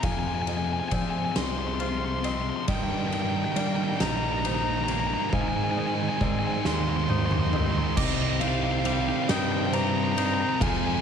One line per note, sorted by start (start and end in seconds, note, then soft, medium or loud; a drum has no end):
0.03 0.10 F2 medium
0.03 0.79 F2 loud
0.03 0.12 C3 medium
0.03 0.46 F3 medium
0.03 2.65 G#4 medium
0.03 2.66 C5 medium
0.03 2.66 F5 medium
0.03 0.47 F5 medium
0.03 0.12 G#5 medium
0.03 kick loud
0.03 ride medium
0.10 0.18 F2 soft
0.10 0.19 C3 soft
0.10 0.18 G#5 medium
0.19 0.27 F2 medium
0.19 0.27 C3 medium
0.19 0.26 G#5 medium
0.27 0.34 F2 soft
0.27 0.35 C3 medium
0.27 0.34 G#5 medium
0.34 0.42 F2 medium
0.34 0.42 C3 medium
0.34 0.41 G#5 medium
0.42 0.50 F2 medium
0.42 0.50 C3 medium
0.42 0.49 G#5 medium
0.47 0.56 F2 medium
0.47 0.57 C3 medium
0.47 2.68 F3 medium
0.47 0.92 D#5 medium
0.47 0.57 G#5 medium
0.47 ride medium
0.57 0.65 F2 medium
0.57 0.66 C3 medium
0.57 0.65 G#5 medium
0.65 0.73 F2 medium
0.65 0.73 C3 medium
0.65 0.73 G#5 medium
0.73 0.81 F2 medium
0.73 0.81 C3 medium
0.73 0.79 G#5 medium
0.80 0.88 F2 medium
0.80 0.89 C3 medium
0.80 0.87 G#5 medium
0.89 0.96 F2 medium
0.89 0.96 C3 medium
0.89 1.29 F3 medium
0.89 2.23 C4 medium
0.89 1.80 D5 medium
0.89 0.95 G#5 medium
0.89 kick medium
0.89 ride medium
0.95 1.04 F2 medium
0.95 1.04 C3 medium
0.95 1.02 G#5 medium
1.02 1.10 F2 medium
1.02 1.12 C3 medium
1.02 1.10 G#5 medium
1.10 1.19 F2 medium
1.10 1.20 C3 medium
1.10 1.18 G#5 medium
1.18 1.27 F2 medium
1.18 1.28 C3 medium
1.18 1.25 G#5 medium
1.25 1.35 F2 medium
1.25 1.31 G#5 medium
1.29 1.36 C3 medium
1.29 1.36 G#5 medium
1.36 2.49 C2 medium
1.36 1.44 F2 medium
1.36 1.43 C3 medium
1.36 2.68 G#3 medium
1.36 1.44 C6 medium
1.36 snare medium
1.36 ride medium
1.44 1.50 F2 medium
1.44 1.50 C3 medium
1.44 1.51 C6 medium
1.51 1.58 F2 medium
1.51 1.59 C3 medium
1.51 1.59 C6 medium
1.59 1.66 F2 medium
1.59 1.67 C3 medium
1.59 1.67 C6 medium
1.67 1.74 F2 medium
1.67 1.75 C3 medium
1.67 1.74 C6 medium
1.74 1.82 F2 medium
1.74 1.82 C3 medium
1.74 1.82 C6 medium
1.80 1.90 F2 medium
1.80 1.90 C3 medium
1.80 2.68 F4 medium
1.80 2.24 C5 medium
1.80 1.89 C6 medium
1.80 ride medium
1.89 1.97 F2 medium
1.89 1.98 C3 medium
1.89 1.97 C6 medium
1.98 2.05 F2 medium
1.98 2.05 C3 medium
1.98 2.04 C6 medium
2.05 2.13 F2 medium
2.05 2.13 C3 medium
2.05 2.11 C6 medium
2.12 2.21 F2 medium
2.12 2.21 C3 medium
2.12 2.19 C6 medium
2.19 2.29 F2 medium
2.19 2.29 C3 medium
2.19 2.27 C6 medium
2.24 2.68 C4 medium
2.24 2.66 D#5 medium
2.24 2.34 C6 medium
2.24 ride medium
2.30 2.36 F2 soft
2.30 2.37 C3 medium
2.35 2.44 F2 medium
2.35 2.44 C3 medium
2.35 2.41 C6 medium
2.41 2.51 F2 medium
2.41 2.52 C3 soft
2.41 2.49 C6 medium
2.50 2.60 F2 medium
2.50 2.56 C6 medium
2.54 2.60 C3 medium
2.54 2.64 C6 medium
2.60 2.67 F2 soft
2.60 2.68 C3 medium
2.67 2.74 G2 medium
2.67 3.44 G2 loud
2.67 4.89 G2 medium
2.67 2.76 D#3 medium
2.67 5.30 G3 medium
2.67 5.30 D#4 medium
2.67 5.30 G4 medium
2.67 5.30 A#4 medium
2.67 3.56 D#5 medium
2.67 2.76 G5 medium
2.67 5.30 A#5 medium
2.67 kick loud
2.67 ride medium
2.75 2.83 G2 medium
2.75 2.83 D#3 soft
2.75 2.83 G5 soft
2.83 2.90 G2 medium
2.83 2.92 D#3 medium
2.83 2.91 G5 medium
2.91 2.98 G2 medium
2.91 3.00 D#3 medium
2.91 2.98 G5 medium
2.99 3.05 G2 medium
2.99 3.07 D#3 medium
2.99 3.06 G5 medium
3.06 3.14 G2 medium
3.06 3.15 D#3 medium
3.06 3.13 G5 medium
3.12 3.22 G2 medium
3.12 5.33 D#3 medium
3.12 3.23 D#3 medium
3.12 3.21 G5 medium
3.12 ride medium
3.22 3.29 G2 medium
3.22 3.30 D#3 medium
3.22 3.29 G5 medium
3.29 3.37 G2 medium
3.29 3.38 D#3 medium
3.29 3.36 G5 medium
3.37 3.46 G2 medium
3.37 3.46 D#3 medium
3.37 3.44 G5 medium
3.44 3.53 G2 medium
3.44 3.53 D#3 medium
3.44 3.52 G5 medium
3.52 3.61 G2 medium
3.52 3.61 D#3 medium
3.52 3.94 G3 medium
3.52 3.59 G5 medium
3.56 4.88 A#3 medium
3.56 4.00 D5 medium
3.56 3.66 G5 medium
3.56 ride medium
3.61 3.68 G2 medium
3.61 3.69 D#3 medium
3.67 3.76 G2 medium
3.67 3.77 D#3 medium
3.67 3.74 G5 medium
3.75 3.84 G2 medium
3.75 3.84 D#3 medium
3.75 3.83 G5 medium
3.84 3.92 G2 medium
3.84 3.92 D#3 medium
3.84 3.89 G5 medium
3.90 4.00 G2 medium
3.90 3.99 D#3 medium
3.90 3.97 G5 medium
3.97 5.14 A#1 loud
3.97 4.07 G2 medium
3.97 4.06 D#3 medium
3.97 5.33 G3 medium
3.97 4.45 D#5 medium
3.97 4.01 G5 medium
3.97 snare loud
3.97 ride medium
4.01 4.07 A#5 medium
4.07 4.15 G2 medium
4.07 4.14 D#3 medium
4.07 4.15 A#5 medium
4.15 4.22 G2 medium
4.15 4.23 D#3 medium
4.15 4.24 A#5 medium
4.23 4.30 G2 medium
4.23 4.30 D#3 medium
4.23 4.31 A#5 medium
4.30 4.38 G2 medium
4.30 4.39 D#3 medium
4.30 4.39 A#5 medium
4.39 4.46 G2 medium
4.39 4.46 D#3 medium
4.39 4.46 A#5 medium
4.44 4.54 G2 medium
4.44 4.54 D#3 medium
4.44 7.09 D#4 medium
4.44 5.33 C5 medium
4.44 4.54 A#5 medium
4.44 ride medium
4.54 4.62 G2 medium
4.54 4.62 D#3 medium
4.54 4.61 A#5 medium
4.61 4.70 G2 medium
4.61 4.68 D#3 medium
4.61 4.68 A#5 medium
4.69 4.78 G2 medium
4.69 4.76 D#3 medium
4.69 4.76 A#5 medium
4.77 4.86 G2 medium
4.77 4.85 D#3 medium
4.77 4.83 A#5 medium
4.84 4.92 G2 medium
4.84 4.93 D#3 medium
4.84 4.91 A#5 medium
4.88 5.33 A#3 medium
4.88 4.99 A#5 medium
4.88 ride medium
4.93 5.00 G2 medium
4.93 5.00 D#3 medium
5.00 5.08 G2 medium
5.00 5.08 D#3 medium
5.00 5.07 A#5 medium
5.07 5.16 G2 medium
5.07 5.16 D#3 medium
5.07 5.13 A#5 medium
5.14 5.24 D#3 medium
5.14 5.21 A#5 medium
5.18 5.24 G2 medium
5.22 5.32 G2 soft
5.22 5.32 D#3 medium
5.22 5.29 A#5 medium
5.30 5.39 G#2 medium
5.30 6.08 G#2 loud
5.30 7.53 G#2 medium
5.30 5.40 D#3 medium
5.30 7.94 D#4 medium
5.30 7.94 G#4 medium
5.30 7.94 C5 medium
5.30 5.77 F5 medium
5.30 5.41 G#5 medium
5.30 5.33 A#5 medium
5.30 kick loud
5.40 5.47 G#2 medium
5.40 5.48 D#3 medium
5.40 5.48 G#5 medium
5.47 5.55 G#2 medium
5.47 5.55 D#3 medium
5.47 5.56 G#5 medium
5.56 5.62 G#2 medium
5.56 5.63 D#3 medium
5.56 5.63 G#5 medium
5.63 5.70 G#2 medium
5.63 5.72 D#3 medium
5.63 5.71 G#5 medium
5.71 5.78 G#2 medium
5.71 5.79 D#3 medium
5.71 5.79 G#5 medium
5.77 5.86 G#2 medium
5.77 7.97 D#3 medium
5.77 5.87 D#3 medium
5.77 6.21 D#5 medium
5.77 5.86 G#5 medium
5.86 5.94 G#2 medium
5.86 5.95 D#3 medium
5.86 5.94 G#5 medium
5.94 6.02 G#2 medium
5.94 6.03 D#3 medium
5.94 6.00 G#5 medium
6.01 6.10 G#2 medium
6.01 6.11 D#3 medium
6.01 6.08 G#5 medium
6.09 6.17 G#2 medium
6.09 6.18 D#3 medium
6.09 6.16 G#5 medium
6.17 6.25 G#2 medium
6.17 6.59 G#2 medium
6.17 6.26 D#3 medium
6.17 6.24 G#5 medium
6.17 kick medium
6.21 7.52 C4 medium
6.21 7.09 D5 medium
6.21 6.31 G#5 medium
6.25 6.33 G#2 medium
6.25 6.33 D#3 medium
6.32 6.41 G#2 medium
6.32 6.41 D#3 medium
6.32 6.39 G#5 medium
6.39 6.49 G#2 medium
6.39 6.49 D#3 medium
6.39 6.46 G#5 medium
6.47 6.56 G#2 medium
6.47 6.57 D#3 medium
6.47 6.53 G#5 medium
6.53 6.64 G#2 medium
6.53 6.65 D#3 medium
6.53 6.61 G#5 medium
6.61 7.78 D#2 medium
6.61 6.72 G#2 medium
6.61 6.73 D#3 medium
6.61 7.97 G#3 medium
6.61 6.66 G#5 medium
6.61 snare medium
6.66 6.73 C6 medium
6.72 6.79 G#2 medium
6.72 6.80 D#3 medium
6.72 6.81 C6 medium
6.80 6.87 G#2 medium
6.80 6.88 D#3 medium
6.80 6.89 C6 medium
6.88 6.95 G#2 medium
6.88 6.96 D#3 medium
6.88 6.96 C6 medium
6.95 7.03 G#2 medium
6.95 7.04 D#3 medium
6.95 7.03 C6 medium
7.03 7.11 G#2 medium
7.03 7.11 D#3 medium
7.03 7.11 C6 medium
7.09 7.18 G#2 medium
7.09 7.18 D#3 medium
7.09 7.97 D#4 medium
7.09 7.53 C5 medium
7.09 7.19 C6 medium
7.09 high tom medium
7.18 7.26 G#2 medium
7.18 7.26 D#3 medium
7.18 7.25 C6 medium
7.26 7.34 G#2 medium
7.26 7.34 D#3 medium
7.26 7.33 C6 medium
7.31 7.41 G#2 medium
7.31 7.42 D#3 medium
7.31 7.39 C6 medium
7.31 mid tom medium
7.40 7.48 G#2 medium
7.40 7.50 D#3 medium
7.40 7.47 C6 medium
7.49 7.56 G#2 medium
7.49 7.57 D#3 medium
7.49 7.56 C6 medium
7.53 7.97 C4 medium
7.53 7.97 D#5 medium
7.53 7.63 C6 medium
7.53 mid tom medium
7.58 7.64 G#2 medium
7.58 7.65 D#3 medium
7.64 7.72 G#2 medium
7.64 7.73 D#3 medium
7.64 7.71 C6 medium
7.71 7.80 G#2 medium
7.71 7.81 D#3 medium
7.71 7.78 C6 medium
7.78 7.88 G#2 medium
7.78 7.86 C6 medium
7.83 7.88 D#3 medium
7.87 7.96 G#2 medium
7.87 7.96 D#3 medium
7.87 7.94 C6 medium
7.96 9.10 C2 medium
7.96 8.39 C3 medium
7.96 8.41 C3 medium
7.96 8.40 D#3 loud
7.96 8.40 G3 loud
7.96 8.41 C4 loud
7.96 10.58 D#4 medium
7.96 10.58 G4 medium
7.96 8.41 G4 loud
7.96 11.01 C5 medium
7.96 8.05 D#5 medium
7.96 10.58 G5 medium
7.96 8.85 D6 medium
7.96 kick loud
7.96 crash loud
8.05 8.13 D#5 medium
8.14 8.22 D#5 medium
8.22 8.30 D#5 medium
8.30 8.38 D#5 medium
8.40 8.83 C3 medium
8.40 10.61 C3 medium
8.40 8.84 D#3 medium
8.40 8.84 G3 medium
8.40 8.85 C4 medium
8.40 8.85 G4 medium
8.40 8.48 F5 loud
8.40 ride medium
8.48 8.55 F5 medium
8.55 8.63 F5 medium
8.64 8.71 F5 medium
8.71 8.79 F5 medium
8.79 8.86 F5 medium
8.84 9.27 C3 medium
8.84 9.28 D#3 medium
8.84 9.28 G3 loud
8.84 9.73 G3 medium
8.84 9.28 C4 loud
8.84 9.29 G4 loud
8.84 9.28 C5 medium
8.84 8.93 F5 medium
8.84 ride medium
8.93 9.01 F5 medium
9.01 9.08 F5 medium
9.09 9.16 F5 medium
9.16 9.23 F5 medium
9.24 9.31 F5 medium
9.28 10.43 G2 loud
9.28 9.71 C3 medium
9.28 9.72 D#3 medium
9.28 9.72 G3 loud
9.28 9.73 C4 loud
9.28 10.16 D#4 medium
9.28 9.73 G4 medium
9.28 9.72 D#5 medium
9.28 9.36 G5 medium
9.28 snare loud
9.28 ride medium
9.36 9.44 G5 medium
9.45 9.52 G5 medium
9.52 9.59 G5 medium
9.59 9.66 G5 medium
9.66 9.74 G5 medium
9.72 10.15 C3 medium
9.72 10.16 D#3 medium
9.72 10.15 G3 medium
9.72 10.61 G3 medium
9.72 10.16 C4 loud
9.72 10.17 G4 medium
9.72 10.61 C5 medium
9.72 9.81 A#5 loud
9.72 ride medium
9.81 9.89 A#5 medium
9.89 9.97 A#5 loud
9.98 10.04 A#5 medium
10.04 10.11 A#5 loud
10.12 10.19 A#5 medium
10.16 10.58 C3 medium
10.16 10.58 D#3 medium
10.16 10.58 G3 medium
10.16 10.58 C4 loud
10.16 10.61 D#4 medium
10.16 10.59 G4 medium
10.16 10.26 A#5 loud
10.16 ride medium
10.26 10.33 A#5 medium
10.34 10.41 A#5 loud
10.41 10.49 A#5 medium
10.49 10.56 A#5 loud
10.56 11.01 F2 medium
10.56 10.62 A#5 medium
10.60 11.01 F2 loud
10.60 11.01 C3 medium
10.60 11.01 F3 loud
10.60 11.01 F3 medium
10.60 11.01 G#3 loud
10.60 11.01 C4 loud
10.60 11.01 F4 medium
10.60 11.01 F4 loud
10.60 11.01 G#4 medium
10.60 11.01 F5 medium
10.60 11.01 G#5 medium
10.60 10.69 G#5 medium
10.60 kick loud
10.60 ride loud
10.69 10.77 G#5 medium
10.77 10.85 G#5 medium
10.86 10.94 G#5 medium
10.94 11.01 G#5 medium